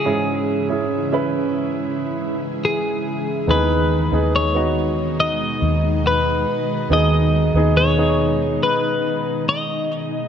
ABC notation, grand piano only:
X:1
M:4/4
L:1/16
Q:1/4=70
K:G#phr
V:1 name="Grand piano"
[CEG]3 [CEG]2 [CEB]8 z3 | [B,DG]3 [B,DG]2 [B,DF]8 z3 | [B,DG]3 [B,DG]2 [B,DG]8 z3 |]
V:2 name="Grand piano" clef=bass
G,,6 z8 z2 | D,6 z8 z2 | D,6 z8 z2 |]